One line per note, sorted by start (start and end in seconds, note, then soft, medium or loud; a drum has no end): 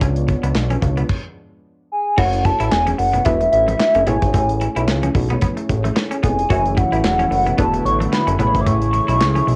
0.00 0.36 C#2 loud
0.00 1.06 F3 medium
0.00 1.06 G#3 medium
0.00 1.05 B3 medium
0.00 1.06 B3 medium
0.00 0.14 C#4 medium
0.00 1.06 D4 medium
0.00 1.06 F4 medium
0.00 1.06 C#5 medium
0.00 kick loud
0.00 closed hi-hat medium
0.16 closed hi-hat soft
0.28 muted clean electric guitar stroke soft
0.28 kick medium
0.28 closed hi-hat medium
0.28 muted conga soft
0.43 0.53 C#2 medium
0.43 0.53 B3 medium
0.43 closed hi-hat medium
0.55 0.77 B1 loud
0.55 snare loud
0.55 clap medium
0.70 0.80 C#4 medium
0.70 closed hi-hat soft
0.70 high conga medium
0.82 1.04 C#2 medium
0.82 muted clean electric guitar stroke soft
0.82 kick loud
0.82 closed hi-hat medium
0.82 muted conga soft
0.82 low conga medium
0.97 1.07 B3 medium
0.97 closed hi-hat soft
0.97 low conga medium
1.09 kick loud
1.09 crash medium
1.92 2.20 G#5 loud
2.17 2.52 F#1 loud
2.17 3.23 A3 medium
2.17 3.24 C#4 medium
2.17 3.24 E4 medium
2.17 2.30 F#4 medium
2.17 3.24 F#4 medium
2.17 3.24 C#5 medium
2.17 2.47 F#5 loud
2.17 kick loud
2.17 crash loud
2.17 muted conga soft
2.33 closed hi-hat medium
2.45 2.73 A5 loud
2.45 muted clean electric guitar stroke soft
2.45 kick loud
2.45 closed hi-hat medium
2.45 muted conga soft
2.60 2.70 A1 loud
2.60 2.70 E4 medium
2.60 closed hi-hat medium
2.71 2.94 E1 loud
2.71 2.98 G#5 loud
2.71 snare loud
2.71 clap medium
2.87 2.97 C#4 medium
2.87 closed hi-hat medium
2.87 high conga medium
2.98 3.21 F#1 medium
2.98 3.27 F#5 medium
2.98 muted clean electric guitar stroke soft
2.98 open hi-hat medium
2.98 muted conga soft
3.13 3.24 B3 medium
3.13 closed hi-hat soft
3.13 low conga medium
3.25 3.48 E1 loud
3.25 4.05 A3 medium
3.25 3.38 B3 medium
3.25 4.07 D4 medium
3.25 4.06 E4 medium
3.25 4.07 F#4 medium
3.25 4.07 B4 medium
3.25 3.52 E5 loud
3.25 kick loud
3.25 closed hi-hat medium
3.25 high conga medium
3.41 muted clean electric guitar stroke soft
3.41 closed hi-hat medium
3.52 3.75 A1 loud
3.52 4.08 E5 loud
3.52 closed hi-hat medium
3.68 3.78 A3 medium
3.68 closed hi-hat medium
3.68 high conga medium
3.79 muted clean electric guitar stroke soft
3.79 snare loud
3.79 clap medium
3.79 muted conga soft
3.94 4.05 F#1 loud
3.94 4.05 C#4 medium
3.94 closed hi-hat medium
4.07 4.19 A1 loud
4.07 6.46 A3 medium
4.07 4.20 B3 medium
4.07 6.46 C#4 medium
4.07 6.46 E4 medium
4.07 6.47 G#4 medium
4.07 6.47 C#5 medium
4.07 4.88 G#5 loud
4.07 closed hi-hat medium
4.07 muted conga soft
4.07 low conga medium
4.22 4.32 G#1 medium
4.22 kick loud
4.22 closed hi-hat medium
4.34 4.68 A1 loud
4.34 4.47 A3 medium
4.34 kick loud
4.34 closed hi-hat medium
4.34 muted conga soft
4.49 closed hi-hat medium
4.61 muted clean electric guitar stroke soft
4.61 closed hi-hat medium
4.61 muted conga soft
4.76 4.90 B1 loud
4.76 4.86 E4 medium
4.76 closed hi-hat medium
4.88 5.10 C#2 loud
4.88 snare loud
4.88 clap medium
4.88 muted conga soft
5.03 5.13 C#4 medium
5.03 closed hi-hat medium
5.03 high conga medium
5.15 5.37 B1 medium
5.15 muted clean electric guitar stroke soft
5.15 kick loud
5.15 open hi-hat medium
5.30 5.40 B3 medium
5.30 closed hi-hat medium
5.30 low conga medium
5.41 5.55 B3 medium
5.41 kick loud
5.41 closed hi-hat medium
5.41 muted conga soft
5.41 high conga medium
5.57 muted clean electric guitar stroke soft
5.57 closed hi-hat medium
5.69 5.91 A1 medium
5.69 kick medium
5.69 closed hi-hat medium
5.69 muted conga soft
5.84 5.94 A3 medium
5.84 closed hi-hat medium
5.84 high conga medium
5.96 muted clean electric guitar stroke soft
5.96 snare loud
5.96 clap medium
5.96 muted conga soft
6.11 6.21 C#4 medium
6.11 closed hi-hat medium
6.23 6.45 F1 medium
6.23 6.36 B3 medium
6.23 6.79 G#5 loud
6.23 kick loud
6.23 closed hi-hat medium
6.23 low conga medium
6.39 closed hi-hat medium
6.49 6.84 F#1 loud
6.49 7.57 C#3 medium
6.49 7.57 E3 medium
6.49 8.37 F#3 medium
6.49 9.56 A3 medium
6.49 7.56 A3 medium
6.49 7.56 C#4 medium
6.49 8.37 E4 medium
6.49 7.56 E4 medium
6.49 6.63 F#4 medium
6.49 7.56 F#4 medium
6.49 7.57 C#5 medium
6.49 kick loud
6.49 closed hi-hat medium
6.66 closed hi-hat medium
6.77 7.58 F#5 loud
6.77 muted clean electric guitar stroke soft
6.77 kick loud
6.77 closed hi-hat medium
6.92 7.02 A1 loud
6.92 7.02 E4 medium
6.92 closed hi-hat medium
7.04 7.26 E1 loud
7.04 snare loud
7.04 clap medium
7.19 7.29 C#4 medium
7.19 closed hi-hat medium
7.19 high conga medium
7.31 7.53 F#1 medium
7.31 muted clean electric guitar stroke soft
7.31 open hi-hat medium
7.31 muted conga soft
7.46 7.56 B3 medium
7.46 closed hi-hat soft
7.46 low conga medium
7.58 7.80 E1 loud
7.58 8.38 D3 medium
7.58 8.38 A3 medium
7.58 8.38 B3 medium
7.58 7.71 B3 medium
7.58 8.39 D4 medium
7.58 8.39 E4 medium
7.58 8.40 F#4 medium
7.58 8.39 B4 medium
7.58 7.84 A5 loud
7.58 kick loud
7.58 closed hi-hat medium
7.58 muted conga soft
7.58 high conga medium
7.74 muted clean electric guitar stroke soft
7.74 closed hi-hat medium
7.85 8.07 A1 loud
7.85 7.98 C#6 loud
7.85 closed hi-hat medium
7.85 muted conga soft
8.00 8.10 A3 medium
8.00 closed hi-hat medium
8.00 high conga medium
8.12 8.38 B5 loud
8.12 muted clean electric guitar stroke soft
8.12 snare loud
8.12 clap medium
8.27 8.37 F#1 loud
8.27 8.37 C#4 medium
8.27 closed hi-hat medium
8.39 8.52 A1 loud
8.39 9.56 C#3 medium
8.39 9.56 E3 medium
8.39 9.56 A3 medium
8.39 8.52 B3 medium
8.39 9.56 C#4 medium
8.39 9.56 E4 medium
8.39 9.56 G#4 medium
8.39 8.47 B4 medium
8.39 8.62 B5 loud
8.39 closed hi-hat medium
8.39 low conga medium
8.47 9.56 C#5 medium
8.55 8.64 G#1 medium
8.55 kick loud
8.55 closed hi-hat medium
8.61 8.68 D6 medium
8.67 9.01 A1 loud
8.67 8.79 A3 medium
8.67 9.56 C#6 loud
8.67 kick loud
8.67 closed hi-hat medium
8.82 closed hi-hat medium
8.93 muted clean electric guitar stroke soft
8.93 closed hi-hat medium
8.93 muted conga soft
9.08 9.22 B1 loud
9.08 9.18 E4 medium
9.08 closed hi-hat medium
9.20 9.42 C#2 medium
9.20 snare loud
9.20 clap medium
9.35 9.45 C#4 medium
9.35 closed hi-hat medium
9.35 high conga medium
9.47 9.56 B1 loud
9.47 muted clean electric guitar stroke soft
9.47 open hi-hat medium